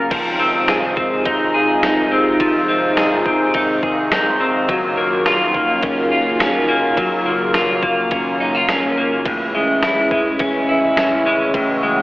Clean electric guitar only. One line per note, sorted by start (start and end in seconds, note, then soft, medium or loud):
0.00 0.10 F#3 medium
0.00 0.17 C#4 medium
0.00 0.17 F4 soft
0.00 0.17 A#4 medium
0.11 2.40 F3 medium
0.39 0.96 C4 medium
0.68 1.53 G#4 medium
0.97 2.11 C4 medium
1.25 1.82 D#4 medium
1.54 2.96 G#4 medium
1.83 3.53 D#4 medium
2.12 2.68 C4 medium
2.41 4.68 F3 medium
2.69 3.25 C4 medium
2.98 3.82 G#4 medium
3.27 4.39 C4 medium
3.55 4.11 D#4 medium
3.83 4.74 G#4 medium
4.12 4.74 D#4 medium
4.41 4.74 C4 medium
4.69 6.96 F#3 medium
4.97 5.53 A#3 medium
5.26 6.10 F4 medium
5.55 6.67 A#3 medium
5.83 6.40 C#4 medium
6.11 7.54 F4 medium
6.40 8.11 C#4 medium
6.69 7.25 A#3 medium
6.97 9.26 F#3 medium
7.26 7.82 A#3 medium
7.55 8.40 F4 medium
7.83 8.96 A#3 medium
8.12 8.69 C#4 medium
8.40 8.55 D#4 medium
8.55 9.32 F4 medium
8.69 10.40 C#4 medium
8.97 9.32 A#3 medium
9.26 11.53 A2 medium
9.55 10.12 G#3 medium
9.83 10.68 E4 medium
10.12 11.26 G#3 medium
10.40 10.97 C#4 medium
10.69 12.02 E4 medium
10.97 12.02 C#4 medium
11.26 11.83 G#3 medium
11.55 12.02 A2 medium
11.83 12.02 G#3 medium